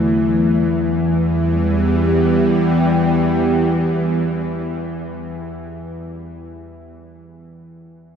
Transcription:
Already playing: synth drone E2 E3, analog synth pad D3 F#3 A3 F#4, synth texture E4 E5
0.70 synth drone E2 E3, analog synth pad E3
0.87 analog synth pad G3
1.01 analog synth pad B3
1.20 analog synth pad G4

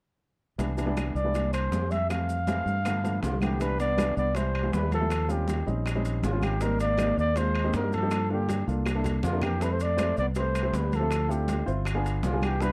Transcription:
0.58 fingered electric bass C2, grand piano E3 G3 B3 D4, high bongo, high conga, high timbale, maracas
0.77 grand piano E3 G3 B3 D4, high conga, high timbale, maracas
0.86 grand piano E3 G3 B3 D4
0.97 high bongo, high conga, high timbale, low timbale, claves, maracas
1.15 fingered electric bass C2, trumpet D5, high conga, maracas
1.24 grand piano E3 G3 B3 D4
1.34 grand piano E3 G3 A#3 D4, high bongo, high conga, high timbale, maracas
1.53 trumpet C5, high conga, high timbale, claves, maracas
1.71 fingered electric bass F2, high bongo, low bongo, high conga, low timbale, maracas
1.91 trumpet E5, high conga, high timbale, maracas
2.09 grand piano E3 G3 A3 C4, trumpet F5, high bongo, high conga, high timbale, claves, maracas
2.29 high bongo, high conga, maracas
2.47 grand piano E3 G3 A3 C4, high bongo, high conga, high timbale, low timbale, maracas
2.66 fingered electric bass G2, high conga, maracas
2.85 grand piano D3 F3 A3 B3, high bongo, high conga, high timbale, claves, maracas
3.04 grand piano D3 F3 A3 B3, high bongo, high conga, high timbale, maracas
3.23 fingered electric bass C2, trombone D3, trumpet F4, high bongo, low bongo, high conga, low timbale, maracas
3.41 grand piano D3 F3 A3 B3, trombone E3, trumpet G4, high bongo, high conga, high timbale, claves, maracas
3.59 grand piano E3 G3 B3 D4, trombone G3, trumpet B4, high bongo, high timbale, maracas
3.79 trombone B3, trumpet D5, high conga, high timbale, maracas
3.97 grand piano E3 G3 B3 D4, high bongo, high conga, high timbale, low timbale, claves, maracas
4.17 fingered electric bass C2, trombone B3, trumpet D5, high conga, maracas
4.35 grand piano E3 G3 B3 E4, trombone G3, trumpet C5, high bongo, high conga, high timbale, maracas
4.54 high conga, high timbale, claves
4.63 grand piano E3 G3 B3 E4
4.73 fingered electric bass D#2, trombone G3, trumpet B4, high bongo, low bongo, high conga, low timbale, maracas
4.92 trombone F3, trumpet A4, high conga, high timbale, maracas
5.01 grand piano E3 G3 B3 E4
5.10 high bongo, high conga, high timbale, claves, maracas
5.28 trombone D#3, grand piano G3 C4 C#4 F4, trumpet G4, high bongo, high conga, maracas
5.48 high bongo, high conga, high timbale, low timbale, maracas
5.66 fingered electric bass A#1, grand piano G3 C4 C#4 D#4, high conga, maracas
5.85 high bongo, high conga, high timbale, claves, maracas
5.95 grand piano G3 C4 C#4 D#4
6.03 high bongo, high conga, high timbale, maracas
6.23 fingered electric bass G#1, trombone C#3, trumpet F4, high bongo, low bongo, high conga, low timbale, maracas
6.32 grand piano G3 C4 C#4 F4
6.42 trombone D#3, trumpet G4, high bongo, high conga, high timbale, claves, maracas
6.60 trombone G3, grand piano A#3 C4 D#4 G4, trumpet A#4, high bongo, high conga, high timbale, maracas
6.79 trombone A#3, trumpet D5, high conga, high timbale, maracas
6.97 grand piano A#3 C4 D#4 G4, high bongo, high conga, high timbale, low timbale, claves, maracas
7.17 fingered electric bass D#2, trombone A#3, trumpet D5, high conga, maracas
7.36 trombone G#3, grand piano A#3 C4 D#4 F4, trumpet C5, high bongo, high conga, high timbale, maracas
7.55 high conga, high timbale, claves
7.64 grand piano A#3 C4 D#4 G4
7.73 fingered electric bass G2, trombone G3, trumpet A#4, high bongo, low bongo, high conga, low timbale, maracas
7.92 trombone F3, trumpet A4, high conga, high timbale, maracas
8.02 grand piano A#3 C4 D#4 G4
8.11 high bongo, high conga, high timbale, claves, maracas
8.29 trombone D3, grand piano A#3 D4 F4 A4, trumpet G4, high bongo, high conga
8.49 high bongo, high conga, high timbale, low timbale, maracas
8.67 fingered electric bass C2, grand piano A#3 D4 F4 A4, maracas
8.86 high bongo, high timbale, claves, maracas
8.95 grand piano A#3 D4 E4 A4
9.04 high bongo, low conga, high timbale, maracas
9.23 fingered electric bass F2, trombone D3, trumpet F4, low bongo, low conga, low timbale, maracas
9.32 grand piano A#3 D4 E4 A#4
9.42 trombone E3, trumpet G4, low bongo, low conga, high timbale, claves, maracas
9.60 trombone G3, grand piano C4 E4 G4 A4, trumpet B4, high bongo, high conga, high timbale, maracas
9.72 trombone A3, trumpet C5
9.80 trombone A3, trumpet D5, high conga, high timbale, maracas
9.97 grand piano C4 E4 G4 C5, high bongo, high conga, high timbale, low timbale, claves, maracas
10.17 fingered electric bass C2, trombone B3, trumpet D5, high conga, maracas
10.35 grand piano C4 E4 G4 B4, trumpet C5, high bongo, high conga, high timbale, maracas
10.39 trombone A3
10.55 high conga, high timbale, claves, maracas
10.62 grand piano C4 E4 G4 C5
10.73 fingered electric bass D2, trombone G3, trumpet B4, high bongo, low bongo, high conga, low timbale, maracas
10.92 trombone F3, trumpet A4, high conga, high timbale, maracas
11.00 grand piano C4 E4 G4 A4
11.11 high bongo, high timbale, claves, maracas
11.28 grand piano C4 E4 F4 A4, trumpet G4, high bongo, high conga, maracas
11.32 trombone D3
11.48 high bongo, high conga, high timbale, low timbale, maracas
11.66 fingered electric bass G1, grand piano C4 E4 F4 C5, high conga, maracas
11.85 high bongo, high conga, high timbale, claves, maracas
11.94 grand piano B3 D4 F4 G#4
12.05 high bongo, high conga, high timbale, maracas
12.23 fingered electric bass C2, trombone D3, trumpet F4, high bongo, low bongo, high conga, low timbale, maracas
12.32 grand piano B3 D4 F4 G#4
12.42 trombone E3, trumpet G4, high bongo, high conga, high timbale, claves, maracas
12.61 trombone G3, grand piano B3 D4 E4 G4, trumpet B4, high bongo, high conga, high timbale, maracas

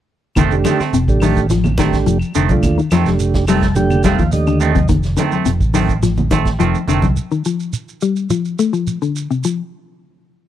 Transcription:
0.35 fingered electric bass F1, clean electric guitar D#3 A3 C4, kick, closed hi-hat, low conga, claves, shekere
0.51 tonewheel organ A3 D4 G4, closed hi-hat, shekere
0.64 clean electric guitar D3 D#3 A3 C4, snare, closed hi-hat, high conga, claves, shekere
0.80 clean electric guitar A3 C4, muted fingered electric bass stroke, snare, shekere
0.93 fingered electric bass F1, clean electric guitar C3, closed hi-hat, shekere
1.08 fingered electric bass A1, tonewheel organ A3 D4 G4, kick, shekere
1.20 clean electric guitar D#3 A3, open hi-hat, high conga, claves, shekere
1.36 kick, closed hi-hat, shekere
1.50 clean electric guitar F3, snare, closed hi-hat, high conga, shekere
1.64 low conga, claves, shekere
1.78 clean electric guitar D#3 A3 C4, tonewheel organ A3 D4 G4, kick, snare, closed hi-hat, high conga, shekere
1.93 kick, snare, closed hi-hat, shekere
2.06 fingered electric bass F1, clean electric guitar F3, closed hi-hat, shekere
2.19 claves, shekere
2.35 fingered electric bass F1, clean electric guitar D3 D#3 A3 C4, closed hi-hat, shekere
2.49 fingered electric bass C2, tonewheel organ A3 D4 F4, kick, closed hi-hat, high conga, shekere
2.63 fingered electric bass D#2, kick, closed hi-hat, low conga, claves, shekere
2.78 clean electric guitar D#3, shekere
2.91 fingered electric bass F2, clean electric guitar D#3 F3 A3 C4, snare, closed hi-hat, high conga, claves, shekere
3.06 fingered electric bass F1, tonewheel organ A3 D4 G4, snare, closed hi-hat, high conga, shekere
3.19 closed hi-hat, shekere
3.34 kick, snare, closed hi-hat, shekere
3.47 clean electric guitar D#3 G3 A3 C4, tonewheel organ A5, open hi-hat, high conga, claves, shekere
3.61 kick, snare, closed hi-hat, shekere
3.75 tonewheel organ A3 D4 G4 G5, muted clean electric guitar stroke, closed hi-hat, high conga, shekere
3.90 closed hi-hat, low conga, claves, shekere
4.04 clean electric guitar D#3 G3 A3 C4, tonewheel organ F5, kick, snare, closed hi-hat, high conga, shekere
4.18 fingered electric bass D#2, clean electric guitar F3, kick, closed hi-hat, shekere
4.32 tonewheel organ A3 D4 G4 D#5, closed hi-hat, shekere
4.47 clean electric guitar D3, closed hi-hat, claves, shekere
4.60 clean electric guitar D#3 A3 C4, tonewheel organ D#5, closed hi-hat, shekere
4.75 clean electric guitar C3, kick, closed hi-hat, high conga, shekere
4.89 fingered electric bass F1, clean electric guitar D#3, kick, closed hi-hat, low conga, shekere
5.03 snare, closed hi-hat, shekere
5.17 clean electric guitar D3 D#3 A3 C4, closed hi-hat, high conga, shekere
5.32 clean electric guitar A3 C4, muted fingered electric bass stroke, high conga, shekere
5.45 fingered electric bass F1, clean electric guitar C3, closed hi-hat, shekere
5.61 fingered electric bass A1, kick, shekere
5.74 clean electric guitar D#3 A3 C4, open hi-hat, high conga, shekere
5.89 kick, closed hi-hat, shekere
6.02 clean electric guitar F3, snare, closed hi-hat, shekere
6.17 low conga, shekere
6.31 clean electric guitar D#3 A3 C4, muted clean electric guitar stroke, kick, closed hi-hat, high conga, shekere
6.45 kick, snare, closed hi-hat, shekere
6.59 fingered electric bass F1, clean electric guitar D#3 F3 A3 C4, closed hi-hat, shekere
6.75 shekere
6.87 fingered electric bass F1, clean electric guitar D3 D#3 A3 C4, closed hi-hat, shekere
7.02 fingered electric bass C2, kick, closed hi-hat, high conga, shekere
7.17 shekere
7.31 clean electric guitar D#3, shekere
7.45 clean electric guitar F3, shekere
7.60 shekere
7.73 shekere
7.89 shekere
8.01 clean electric guitar G3, shekere
8.16 shekere
8.30 clean electric guitar F3, shekere
8.45 shekere
8.59 clean electric guitar A3, shekere
8.73 clean electric guitar F3, shekere
8.87 shekere
9.02 clean electric guitar D3, shekere
9.16 shekere
9.31 clean electric guitar C3, shekere
9.44 clean electric guitar F3, shekere

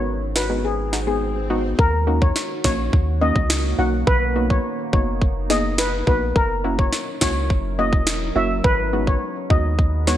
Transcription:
Already playing: sub bass G#1, ambient pad G#3 D#4 F#4 B4, swell
0.35 synth pluck D#4 F#4, steel pan B4, snare
0.50 synth pluck G#3 B3 D#4 F#4
0.65 steel pan G#4
0.93 synth pluck D#4 F#4, snare
1.07 synth pluck G#3 B3 D#4 G#4, steel pan G#4
1.50 synth pluck G#3 B3 D#4 F#4
1.79 sub bass D#2, ambient pad D#3 A#3 C#4 F#4, steel pan A#4, kick
2.07 synth pluck A#3 C#4 D#4 F#4
2.22 steel pan C#5, kick
2.36 snare
2.64 sub bass A#1, synth pluck A#3 C#4 D#4 F#4, steel pan C#5, kick, snare
2.93 sub bass D#2, kick
3.21 synth pluck A#3 C#4 D#4 F#4, steel pan D#5
3.36 sub bass C#2, kick
3.50 snare
3.79 sub bass B1, synth pluck A#3 C#4 D#4 F#4, steel pan F#5
4.07 sub bass B1, ambient pad B3 D#4, steel pan B4, kick
4.36 synth pluck A#3 B3 D#4 F#4
4.50 steel pan C#5, kick
4.93 sub bass F#1, synth pluck A#3 B3 D#4 F#4, steel pan C#5, kick
5.22 kick
5.50 synth pluck A#3 B3 D#4 G#4, steel pan D#5, snare
5.78 steel pan B4, snare
6.07 sub bass A#1, synth pluck A#3 B3 D#4 F#4, steel pan B4, kick
6.36 sub bass F#1, ambient pad F#3 C#4 E4 A#4, steel pan A#4, kick
6.64 synth pluck A#3 C#4 E4 F#4
6.79 steel pan C#5, kick
6.93 snare
7.21 sub bass C#2, synth pluck A#3 C#4 E4 F#4, steel pan C#5, kick, snare
7.50 sub bass F#1, kick
7.79 synth pluck A#3 C#4 E4 F#4, steel pan D#5
7.93 sub bass E1, kick
8.07 snare
8.35 sub bass F#1, synth pluck A#3 C#4 E4 F#4, steel pan E5
8.64 sub bass G#1, ambient pad G#3 D#4 F#4 B4, steel pan B4, kick
8.93 synth pluck G#3 B3 D#4 F#4
9.07 steel pan C#5, kick
9.50 sub bass D#2, synth pluck G#3 B3 D#4 F#4, steel pan D#5, kick
9.79 kick
10.07 synth pluck G#3 B3 D#4 F#4, steel pan C#5, snare

